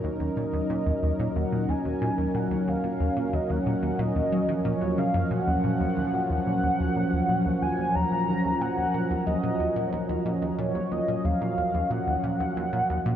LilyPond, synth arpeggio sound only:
\new Staff \with { instrumentName = "Synth arpeggio sound" } { \clef bass \time 4/4 \key ees \minor \tempo 4 = 91 ees,16 ees,16 bes,16 ees,16 bes,16 ees,16 ees,16 bes,16 ees,16 bes,16 ees,16 ees,16 bes,16 ees,16 bes,16 ees,16 | ees,16 bes,16 ees,16 bes,16 ees,16 ees,16 bes,16 ees,16 bes,16 ees,16 ges16 ees16 bes,16 ees,16 des16 ges,16 | bes,16 ees,16 bes,16 ees,16 ees,16 bes,16 ees,16 bes,16 ees,16 ees,16 bes,16 ees,16 bes,16 ees,16 ees,16 bes,16 | ees,16 bes,16 ees,16 ees,16 bes,16 ees,16 bes,16 ees,16 ees,16 bes,16 ees,16 bes,16 ees,16 ees,16 bes,16 ees,16 |
bes,16 ees,16 ees,16 bes,16 ees,16 bes,16 ees,16 ees,16 bes,16 ees,16 bes,16 ees,16 ees,16 bes,16 ees,16 bes,16 | }